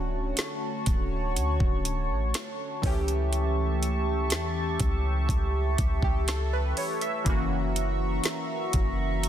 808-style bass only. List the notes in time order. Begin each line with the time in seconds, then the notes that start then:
Already playing: D1
0.87 D1
1.36 D2
1.60 D1
2.10 A1
2.83 C#2
4.31 E2
4.80 C#2
5.29 C#2
5.79 C#2
6.03 C#2
7.26 F#1
8.74 F#1